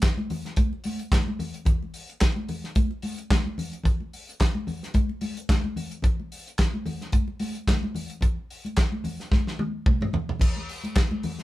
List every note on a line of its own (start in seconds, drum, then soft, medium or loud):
0.02 kick loud
0.02 snare loud
0.02 clap medium
0.02 closed hi-hat medium
0.02 muted conga soft
0.18 muted conga soft
0.18 high conga medium
0.30 open hi-hat medium
0.30 low conga medium
0.45 snare soft
0.45 closed hi-hat soft
0.56 kick loud
0.56 closed hi-hat medium
0.56 muted conga soft
0.56 high conga medium
0.73 muted conga soft
0.84 open hi-hat medium
0.84 high conga medium
0.99 closed hi-hat medium
1.12 kick loud
1.12 snare loud
1.12 clap medium
1.12 closed hi-hat medium
1.12 high conga medium
1.28 muted conga soft
1.28 high conga medium
1.39 open hi-hat medium
1.39 low conga medium
1.54 closed hi-hat soft
1.65 kick loud
1.65 closed hi-hat medium
1.65 muted conga soft
1.65 low conga medium
1.83 muted conga soft
1.94 open hi-hat medium
2.10 closed hi-hat soft
2.20 kick loud
2.20 snare loud
2.20 clap medium
2.20 closed hi-hat medium
2.20 muted conga soft
2.36 muted conga soft
2.36 high conga medium
2.48 open hi-hat medium
2.48 low conga medium
2.64 snare soft
2.64 closed hi-hat soft
2.75 kick loud
2.75 closed hi-hat medium
2.75 muted conga soft
2.75 high conga medium
2.91 muted conga soft
3.02 open hi-hat medium
3.02 high conga medium
3.18 closed hi-hat soft
3.30 kick loud
3.30 snare loud
3.30 clap medium
3.30 closed hi-hat medium
3.30 muted conga soft
3.30 high conga medium
3.46 muted conga soft
3.46 high conga medium
3.58 open hi-hat medium
3.58 low conga medium
3.73 closed hi-hat soft
3.84 kick loud
3.84 closed hi-hat medium
3.84 low conga medium
4.00 muted conga soft
4.13 open hi-hat medium
4.29 closed hi-hat soft
4.40 kick loud
4.40 snare loud
4.40 clap medium
4.40 closed hi-hat medium
4.40 muted conga soft
4.55 muted conga soft
4.55 high conga medium
4.67 open hi-hat medium
4.67 low conga medium
4.83 snare soft
4.83 closed hi-hat soft
4.94 kick loud
4.94 closed hi-hat medium
4.94 muted conga soft
4.94 high conga medium
5.09 muted conga soft
5.21 open hi-hat medium
5.21 high conga medium
5.37 closed hi-hat soft
5.49 kick loud
5.49 snare loud
5.49 clap medium
5.49 closed hi-hat medium
5.49 muted conga soft
5.49 high conga medium
5.64 muted conga soft
5.64 high conga medium
5.76 open hi-hat medium
5.76 low conga medium
5.91 closed hi-hat soft
6.02 kick loud
6.02 closed hi-hat medium
6.02 muted conga soft
6.02 low conga medium
6.20 muted conga soft
6.32 open hi-hat medium
6.48 closed hi-hat soft
6.58 kick loud
6.58 snare loud
6.58 clap medium
6.58 closed hi-hat medium
6.74 high conga medium
6.86 open hi-hat medium
6.86 low conga medium
7.01 snare soft
7.01 closed hi-hat soft
7.12 kick loud
7.12 closed hi-hat medium
7.12 high conga medium
7.28 muted conga soft
7.40 open hi-hat medium
7.40 high conga medium
7.55 closed hi-hat soft
7.68 kick loud
7.68 snare loud
7.68 clap medium
7.68 closed hi-hat medium
7.68 muted conga soft
7.68 high conga medium
7.83 muted conga soft
7.83 high conga medium
7.95 open hi-hat medium
7.95 low conga medium
8.10 closed hi-hat soft
8.21 kick loud
8.21 closed hi-hat medium
8.21 low conga medium
8.50 open hi-hat medium
8.65 closed hi-hat soft
8.65 high conga medium
8.76 kick loud
8.76 snare medium
8.76 clap medium
8.76 closed hi-hat medium
8.76 muted conga soft
8.92 high conga medium
9.04 open hi-hat medium
9.04 low conga medium
9.20 snare soft
9.20 closed hi-hat soft
9.31 kick loud
9.31 snare medium
9.31 muted conga soft
9.31 high conga medium
9.47 snare medium
9.59 high tom medium
9.59 high conga medium
9.86 kick loud
9.86 mid tom medium
9.86 muted conga soft
9.86 high conga medium
10.01 mid tom medium
10.01 high conga medium
10.13 floor tom loud
10.13 low conga medium
10.29 floor tom medium
10.40 kick loud
10.40 crash loud
10.40 muted conga soft
10.40 low conga medium
10.57 muted conga soft
10.69 open hi-hat medium
10.84 closed hi-hat medium
10.84 high conga medium
10.95 kick loud
10.95 snare loud
10.95 clap medium
10.95 closed hi-hat medium
10.95 muted conga soft
11.11 muted conga soft
11.11 high conga medium
11.23 open hi-hat medium
11.23 low conga medium
11.39 snare soft
11.39 closed hi-hat soft